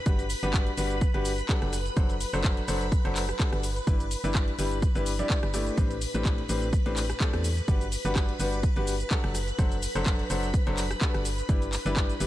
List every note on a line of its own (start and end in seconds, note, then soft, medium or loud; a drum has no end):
0.00 5.76 B4 medium
0.00 5.76 B5 medium
0.06 0.35 G1 medium
0.06 0.22 G3 medium
0.06 0.22 D4 medium
0.06 0.22 F#4 medium
0.06 0.22 G4 medium
0.06 0.22 B4 medium
0.06 kick loud
0.06 closed hi-hat medium
0.06 shaker soft
0.19 closed hi-hat soft
0.19 shaker soft
0.30 open hi-hat loud
0.30 shaker medium
0.43 0.71 G1 medium
0.43 0.68 G3 loud
0.43 0.68 D4 medium
0.43 0.68 F#4 medium
0.43 0.68 G4 medium
0.43 0.68 B4 loud
0.43 closed hi-hat soft
0.43 shaker soft
0.54 kick loud
0.54 cross-stick medium
0.54 clap loud
0.54 closed hi-hat medium
0.54 shaker soft
0.67 closed hi-hat soft
0.77 1.06 G1 medium
0.77 0.94 G3 medium
0.77 0.94 D4 medium
0.77 0.94 F#4 medium
0.77 0.94 G4 medium
0.77 0.94 B4 loud
0.77 open hi-hat loud
0.77 shaker medium
0.90 closed hi-hat soft
0.90 shaker soft
1.01 kick loud
1.01 closed hi-hat medium
1.01 shaker soft
1.14 1.42 G1 medium
1.14 1.29 G3 medium
1.14 1.29 D4 medium
1.14 1.29 F#4 medium
1.14 1.29 G4 medium
1.14 1.29 B4 loud
1.14 closed hi-hat soft
1.25 open hi-hat loud
1.25 shaker medium
1.38 closed hi-hat soft
1.38 shaker soft
1.49 1.72 F#3 medium
1.49 1.72 D4 medium
1.49 1.72 F#4 medium
1.49 1.72 G4 medium
1.49 1.72 A4 medium
1.49 kick loud
1.49 clap loud
1.49 closed hi-hat medium
1.49 shaker soft
1.62 1.90 F#1 loud
1.62 cross-stick medium
1.62 closed hi-hat soft
1.73 cross-stick medium
1.73 open hi-hat loud
1.73 shaker medium
1.86 closed hi-hat soft
1.86 shaker soft
1.97 2.25 F#1 loud
1.97 2.13 F#3 medium
1.97 2.13 D4 medium
1.97 2.13 F#4 medium
1.97 2.13 A4 medium
1.97 2.13 C5 medium
1.97 kick loud
1.97 closed hi-hat medium
1.97 shaker soft
2.10 closed hi-hat soft
2.10 shaker soft
2.21 open hi-hat loud
2.21 shaker medium
2.33 2.61 F#1 medium
2.33 2.58 F#3 medium
2.33 2.58 D4 medium
2.33 2.58 F#4 medium
2.33 2.58 A4 medium
2.33 2.58 C5 loud
2.33 closed hi-hat soft
2.33 shaker soft
2.44 kick loud
2.44 clap loud
2.44 closed hi-hat medium
2.44 shaker soft
2.57 closed hi-hat soft
2.68 2.97 F#1 medium
2.68 2.84 F#3 medium
2.68 2.84 D4 medium
2.68 2.84 F#4 medium
2.68 2.84 A4 medium
2.68 2.84 C5 medium
2.68 open hi-hat loud
2.68 shaker medium
2.81 closed hi-hat soft
2.81 shaker soft
2.92 kick loud
2.92 closed hi-hat medium
2.92 shaker soft
3.05 3.33 F#1 medium
3.05 3.20 F#3 medium
3.05 3.20 D4 medium
3.05 3.20 F#4 medium
3.05 3.20 A4 medium
3.05 3.20 C5 loud
3.05 closed hi-hat soft
3.16 clap medium
3.16 open hi-hat loud
3.16 shaker medium
3.29 cross-stick medium
3.29 closed hi-hat soft
3.29 shaker soft
3.40 3.62 G3 medium
3.40 3.62 D4 medium
3.40 3.62 F#4 medium
3.40 3.62 A4 medium
3.40 3.62 B4 medium
3.40 kick loud
3.40 clap loud
3.40 closed hi-hat medium
3.40 shaker soft
3.52 3.80 G1 loud
3.52 cross-stick medium
3.52 closed hi-hat soft
3.63 open hi-hat loud
3.63 shaker medium
3.76 closed hi-hat soft
3.76 shaker soft
3.87 4.16 G1 loud
3.87 4.03 G3 medium
3.87 4.03 D4 medium
3.87 4.03 E4 medium
3.87 4.03 G4 medium
3.87 4.03 B4 medium
3.87 kick loud
3.87 closed hi-hat medium
3.87 shaker soft
4.00 closed hi-hat soft
4.00 shaker soft
4.11 open hi-hat loud
4.11 shaker medium
4.24 4.52 G1 medium
4.24 4.49 G3 medium
4.24 4.49 D4 medium
4.24 4.49 E4 medium
4.24 4.49 G4 medium
4.24 4.49 B4 loud
4.24 closed hi-hat soft
4.24 shaker soft
4.35 kick loud
4.35 cross-stick medium
4.35 clap loud
4.35 closed hi-hat medium
4.35 shaker soft
4.48 closed hi-hat soft
4.59 4.87 G1 medium
4.59 4.75 G3 medium
4.59 4.75 D4 medium
4.59 4.75 E4 medium
4.59 4.75 G4 medium
4.59 4.75 B4 loud
4.59 open hi-hat loud
4.59 shaker medium
4.72 closed hi-hat soft
4.72 shaker soft
4.82 kick loud
4.82 closed hi-hat medium
4.82 shaker soft
4.95 5.23 G1 medium
4.95 5.10 G3 medium
4.95 5.10 D4 medium
4.95 5.10 E4 medium
4.95 5.10 G4 medium
4.95 5.10 B4 loud
4.95 closed hi-hat soft
4.95 shaker soft
5.06 open hi-hat loud
5.06 shaker medium
5.19 5.44 G3 medium
5.19 5.44 D4 medium
5.19 5.44 E4 medium
5.19 5.44 G4 medium
5.19 5.44 D5 loud
5.19 closed hi-hat soft
5.19 shaker soft
5.30 kick loud
5.30 clap loud
5.30 closed hi-hat medium
5.30 shaker soft
5.43 5.71 G1 medium
5.43 cross-stick medium
5.43 closed hi-hat soft
5.54 5.74 A3 medium
5.54 5.74 D4 medium
5.54 5.74 E4 medium
5.54 5.74 G4 medium
5.54 5.74 D5 medium
5.54 cross-stick medium
5.54 open hi-hat loud
5.54 shaker medium
5.67 closed hi-hat soft
5.67 shaker soft
5.78 6.06 A1 loud
5.78 5.94 A2 medium
5.78 5.94 C4 medium
5.78 5.94 D4 medium
5.78 5.94 G4 medium
5.78 12.27 B4 medium
5.78 5.94 B4 medium
5.78 12.27 B5 medium
5.78 kick loud
5.78 closed hi-hat medium
5.78 shaker soft
5.91 closed hi-hat soft
5.91 shaker soft
6.01 open hi-hat loud
6.01 shaker medium
6.14 6.42 A1 medium
6.14 6.39 A2 loud
6.14 6.39 C4 medium
6.14 6.39 D4 medium
6.14 6.39 G4 medium
6.14 6.39 B4 loud
6.14 closed hi-hat soft
6.14 shaker soft
6.25 kick loud
6.25 clap loud
6.25 closed hi-hat medium
6.25 shaker soft
6.38 closed hi-hat soft
6.49 6.78 A1 medium
6.49 6.65 A2 medium
6.49 6.65 C4 medium
6.49 6.65 D4 medium
6.49 6.65 G4 medium
6.49 6.65 B4 loud
6.49 open hi-hat loud
6.49 shaker medium
6.62 closed hi-hat soft
6.62 shaker soft
6.73 kick loud
6.73 closed hi-hat medium
6.73 shaker soft
6.86 7.14 A1 medium
6.86 7.01 A2 medium
6.86 7.01 C4 medium
6.86 7.01 D4 medium
6.86 7.00 G4 medium
6.86 7.01 B4 loud
6.86 closed hi-hat soft
6.97 clap medium
6.97 open hi-hat loud
6.97 shaker medium
7.10 cross-stick medium
7.10 closed hi-hat soft
7.10 shaker soft
7.20 7.45 A2 medium
7.20 7.45 C4 medium
7.20 7.45 D4 medium
7.20 7.45 G4 medium
7.20 7.45 A4 medium
7.20 kick loud
7.20 clap loud
7.20 closed hi-hat medium
7.20 shaker soft
7.33 7.61 E2 loud
7.33 cross-stick medium
7.33 closed hi-hat soft
7.44 open hi-hat loud
7.44 shaker medium
7.57 closed hi-hat soft
7.57 shaker soft
7.68 7.97 G1 medium
7.68 7.84 G3 medium
7.68 7.84 D4 medium
7.68 7.84 F#4 medium
7.68 7.84 G4 medium
7.68 7.84 B4 medium
7.68 kick loud
7.68 closed hi-hat medium
7.68 shaker soft
7.81 closed hi-hat soft
7.81 shaker soft
7.92 open hi-hat loud
7.92 shaker medium
8.05 8.33 G1 medium
8.05 8.30 G3 loud
8.05 8.30 D4 medium
8.05 8.30 F#4 medium
8.05 8.30 G4 medium
8.05 8.30 B4 loud
8.05 closed hi-hat soft
8.05 shaker soft
8.16 kick loud
8.16 cross-stick medium
8.16 clap loud
8.16 closed hi-hat medium
8.16 shaker soft
8.29 closed hi-hat soft
8.40 8.68 G1 medium
8.40 8.56 G3 medium
8.40 8.56 D4 medium
8.40 8.56 F#4 medium
8.40 8.56 G4 medium
8.40 8.56 B4 loud
8.40 open hi-hat loud
8.40 shaker medium
8.53 closed hi-hat soft
8.53 shaker soft
8.63 kick loud
8.63 closed hi-hat medium
8.63 shaker soft
8.76 9.04 G1 medium
8.76 8.91 G3 medium
8.76 8.91 D4 medium
8.76 8.91 F#4 medium
8.76 8.91 G4 medium
8.76 8.91 B4 loud
8.76 closed hi-hat soft
8.87 open hi-hat loud
8.87 shaker medium
9.00 closed hi-hat soft
9.00 shaker soft
9.11 9.34 F#3 medium
9.11 9.34 D4 medium
9.11 9.34 F#4 medium
9.11 9.34 G4 medium
9.11 9.34 A4 medium
9.11 kick loud
9.11 clap loud
9.11 closed hi-hat medium
9.11 shaker soft
9.24 9.52 F#1 loud
9.24 cross-stick medium
9.24 closed hi-hat soft
9.35 cross-stick medium
9.35 open hi-hat loud
9.35 shaker medium
9.48 closed hi-hat soft
9.48 shaker soft
9.59 9.87 F#1 medium
9.59 9.75 F#3 medium
9.59 9.75 D4 medium
9.59 9.75 F#4 medium
9.59 9.75 A4 medium
9.59 9.75 C5 medium
9.59 kick loud
9.59 closed hi-hat medium
9.59 shaker soft
9.72 closed hi-hat soft
9.72 shaker soft
9.82 open hi-hat loud
9.82 shaker medium
9.95 10.23 F#1 medium
9.95 10.20 F#3 loud
9.95 10.20 D4 medium
9.95 10.20 F#4 medium
9.95 10.20 A4 medium
9.95 10.20 C5 loud
9.95 closed hi-hat soft
9.95 shaker soft
10.06 kick loud
10.06 clap loud
10.06 closed hi-hat medium
10.06 shaker soft
10.19 closed hi-hat soft
10.30 10.59 F#1 medium
10.30 10.46 F#3 medium
10.30 10.46 D4 medium
10.30 10.46 F#4 medium
10.30 10.46 A4 medium
10.30 10.46 C5 loud
10.30 open hi-hat loud
10.30 shaker medium
10.43 closed hi-hat soft
10.43 shaker soft
10.54 kick loud
10.54 closed hi-hat medium
10.54 shaker soft
10.67 10.95 F#1 medium
10.67 10.81 F#3 medium
10.67 10.81 D4 medium
10.67 10.81 F#4 medium
10.67 10.81 A4 medium
10.67 10.81 C5 loud
10.67 closed hi-hat soft
10.78 clap medium
10.78 open hi-hat loud
10.78 shaker medium
10.91 cross-stick medium
10.91 closed hi-hat soft
10.91 shaker soft
11.01 11.24 G3 medium
11.01 11.24 D4 medium
11.01 11.24 F#4 medium
11.01 11.24 A4 medium
11.01 11.24 B4 medium
11.01 kick loud
11.01 clap loud
11.01 closed hi-hat medium
11.01 shaker soft
11.14 11.42 G1 loud
11.14 cross-stick medium
11.14 closed hi-hat soft
11.25 open hi-hat loud
11.25 shaker medium
11.38 closed hi-hat soft
11.38 shaker soft
11.49 11.78 G1 loud
11.49 11.65 G3 medium
11.49 11.65 D4 medium
11.49 11.65 E4 medium
11.49 11.65 G4 medium
11.49 11.65 B4 medium
11.49 kick loud
11.49 closed hi-hat medium
11.49 shaker soft
11.62 closed hi-hat soft
11.62 shaker soft
11.73 clap medium
11.73 open hi-hat loud
11.73 shaker medium
11.86 12.13 G1 medium
11.86 12.10 G3 loud
11.86 12.10 D4 medium
11.86 12.10 E4 medium
11.86 12.10 G4 medium
11.86 12.10 B4 loud
11.86 closed hi-hat soft
11.86 shaker soft
11.97 kick loud
11.97 cross-stick medium
11.97 clap loud
11.97 closed hi-hat medium
11.97 shaker soft
12.10 closed hi-hat soft
12.10 shaker soft
12.20 12.27 G1 medium
12.20 12.27 G3 medium
12.20 12.27 D4 medium
12.20 12.27 E4 medium
12.20 12.27 G4 medium
12.20 12.27 B4 loud
12.20 open hi-hat loud
12.20 shaker medium